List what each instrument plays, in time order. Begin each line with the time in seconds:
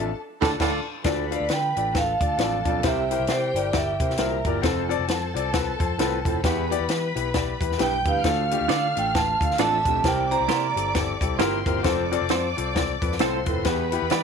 Already playing: picked electric bass A1, baritone saxophone F2, string section A4 A5
0.41 picked electric bass D2, baritone saxophone A2, grand piano D4 F4 A4, clean electric guitar D4 F4 A4 D5, string section A4 A5, kick, snare, crash
0.59 picked electric bass D2, baritone saxophone A2, grand piano D4 F4 A4 F5, clean electric guitar D4 F4 A4 D5, string section A4 A5, kick, snare, crash
1.04 baritone saxophone D2, picked electric bass D2, grand piano D4 F4 A4 D5, string section B4 B5, kick, snare, closed hi-hat
1.31 grand piano D4 F4 A4 F5, closed hi-hat
1.36 vibraphone D5
1.40 picked electric bass D2
1.49 picked electric bass D3, grand piano D4 F4 A4 B4, snare, closed hi-hat
1.53 vibraphone G5
1.76 picked electric bass A1, grand piano D4 F4 A4 D5, closed hi-hat
1.93 grand piano D4 F4 A4 B4, string section A4 A5, kick, snare, closed hi-hat
1.98 vibraphone F5
2.20 picked electric bass D2, grand piano D4 F4 A4 D5, kick, closed hi-hat
2.37 picked electric bass A1, baritone saxophone F2, grand piano D4 F4 A4 D5, snare, closed hi-hat
2.65 picked electric bass B1, baritone saxophone F2, grand piano D4 F4 A4 D5, kick, closed hi-hat
2.83 picked electric bass C2, baritone saxophone C3, grand piano E4 G4 A#4 C5, string section G4 G5, kick, snare, closed hi-hat
2.87 vibraphone E5
3.11 grand piano E4 G4 A#4 C5, closed hi-hat
3.20 picked electric bass C2
3.27 picked electric bass C3, grand piano E4 G4 A#4, vibraphone C5, snare, closed hi-hat
3.54 picked electric bass G1, grand piano E4 G4 A#4 C5, vibraphone D5, closed hi-hat
3.73 picked electric bass G1, grand piano E4 G4 A#4 D5, vibraphone E5, kick, snare, closed hi-hat
4.00 picked electric bass C3, grand piano E4 G4 A#4 C5, kick, closed hi-hat
4.10 snare
4.17 picked electric bass C2, baritone saxophone A#2, grand piano E4 G4 A#4 C5, string section A#4 A#5, snare, closed hi-hat
4.45 picked electric bass G1, baritone saxophone A#2, grand piano E4 G4 A#4 D5, kick, closed hi-hat
4.62 picked electric bass F1, baritone saxophone F2, grand piano C4 F4 A4 C5, string section A4 A5, kick, snare, closed hi-hat
4.89 grand piano C4 F4 A4 D5, closed hi-hat
4.99 picked electric bass F1
5.07 picked electric bass F2, grand piano C4 F4 A4 C5, snare, closed hi-hat
5.34 picked electric bass C2, grand piano C4 F4 A4 D5, closed hi-hat
5.53 grand piano C4 F4 A4 B4, kick, snare, closed hi-hat
5.79 picked electric bass F2, grand piano C4 F4 A4 C5, kick, closed hi-hat
5.98 picked electric bass C2, baritone saxophone A2, grand piano C4 F4 A4 B4, snare, closed hi-hat
6.25 picked electric bass F1, baritone saxophone A2, grand piano C4 F4 A4 C5, kick, closed hi-hat
6.43 baritone saxophone E2, picked electric bass E2, grand piano B3 E4 G4 B4, string section B4 B5, kick, snare, closed hi-hat
6.70 grand piano B3 E4 G4 D5, closed hi-hat
6.80 picked electric bass E2
6.88 picked electric bass E3, grand piano B3 E4 G4 B4, snare, closed hi-hat
7.15 picked electric bass B1, grand piano B3 E4 G4 B4, closed hi-hat
7.33 grand piano B3 E4 G4 D5, kick, snare, closed hi-hat
7.60 picked electric bass E2, grand piano B3 E4 G4 B4, kick, closed hi-hat
7.72 snare
7.77 picked electric bass B1, baritone saxophone G2, grand piano B3 E4 G4 B4, string section G5 G6, vibraphone G5, snare, closed hi-hat
8.05 picked electric bass D2, baritone saxophone G2, grand piano B3 E4 G4 B4, vibraphone F5, kick, closed hi-hat
8.23 picked electric bass D2, baritone saxophone D2, grand piano A3 D4 F4 A4, string section F5 F6, kick, snare, closed hi-hat
8.51 grand piano A3 D4 F4 G4, closed hi-hat
8.61 picked electric bass D2
8.68 picked electric bass D3, grand piano A3 F4 A4, clean electric guitar D4 F4 A4 D5, vibraphone F5, snare, closed hi-hat
8.95 picked electric bass A1, grand piano A3 D4 F4 A4, vibraphone G5, closed hi-hat
9.14 grand piano A3 D4 F4 B4, vibraphone A5, kick, snare, closed hi-hat
9.40 picked electric bass D2, grand piano A3 D4 F4 A4, vibraphone F5, kick, closed hi-hat
9.51 snare
9.58 picked electric bass A1, baritone saxophone F2, grand piano A3 D4 F4 A4, clean electric guitar D4 F4 A4 D5, string section E5 E6, vibraphone A5, snare, closed hi-hat
9.85 picked electric bass B1, baritone saxophone F2, grand piano A3 D4 F4 G4, kick, closed hi-hat
10.03 picked electric bass C2, baritone saxophone C3, grand piano C4 E4 G4 A#4, string section D5 D6, vibraphone G5, kick, snare, closed hi-hat
10.31 grand piano C4 E4 G4 C5, vibraphone A#5, closed hi-hat
10.40 picked electric bass C2
10.48 picked electric bass C3, clean electric guitar A#3 E4 G4 C5, grand piano C4 G4 A#4, snare, closed hi-hat
10.75 picked electric bass G1, grand piano C4 E4 G4 A4, closed hi-hat
10.95 grand piano C4 E4 G4 A4, kick, snare, closed hi-hat
11.21 picked electric bass C2, grand piano C4 E4 G4 A4, kick, closed hi-hat
11.38 picked electric bass G1, baritone saxophone A#2, clean electric guitar A#3 E4 G4 C5, grand piano C4 E4 G4 A#4, string section C5 C6, snare, closed hi-hat
11.66 picked electric bass G1, baritone saxophone A#2, grand piano C4 E4 G4 A#4, kick, closed hi-hat
11.83 picked electric bass F1, baritone saxophone F2, grand piano C4 F4 A4 C5, string section D5 D6, kick, snare, closed hi-hat
12.12 grand piano C4 F4 A4 D5, closed hi-hat
12.21 picked electric bass F1
12.29 picked electric bass F2, grand piano C4 F4 A4 C5, clean electric guitar C4 F4 A4 C5, snare, closed hi-hat
12.57 picked electric bass C2, grand piano C4 F4 A4 C5, closed hi-hat
12.75 grand piano C4 F4 A4 D5, kick, snare, closed hi-hat
13.01 picked electric bass F2, grand piano C4 F4 A4 B4, kick, closed hi-hat
13.12 snare
13.19 picked electric bass C2, baritone saxophone A2, grand piano C4 F4 A4 C5, clean electric guitar C4 F4 A4 C5, string section C5 C6, snare, closed hi-hat
13.45 picked electric bass F1, baritone saxophone A2, grand piano C4 F4 A4 B4, kick, closed hi-hat
13.64 picked electric bass E2, baritone saxophone E2, grand piano B3 E4 G4 B4, string section B4 B5, kick, snare, closed hi-hat
13.91 grand piano B3 E4 G4 B4, closed hi-hat
14.02 picked electric bass E2
14.09 picked electric bass E3, grand piano B3 E4 G4 D5, clean electric guitar B3 E4 G4 B4, snare, closed hi-hat